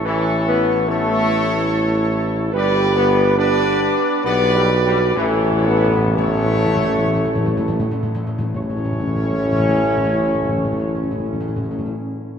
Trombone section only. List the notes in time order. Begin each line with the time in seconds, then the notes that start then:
0.04 E3
0.47 B3
0.88 A3
2.54 G3
2.95 B3
3.38 D4
4.25 B3
4.54 G3
4.85 G3
5.15 E3
5.65 B3
6.16 A3
8.54 C#4